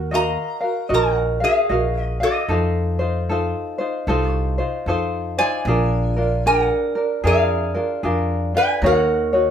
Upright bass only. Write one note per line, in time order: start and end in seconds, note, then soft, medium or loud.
0.00 0.35 D#2 loud
0.90 1.42 A#1 loud
1.70 2.21 A#1 medium
2.48 3.52 F2 loud
4.07 4.59 C2 medium
4.86 5.38 F2 medium
5.65 6.68 A#1 loud
7.24 7.75 F2 loud
8.03 8.55 F2 medium
8.82 9.51 D#2 loud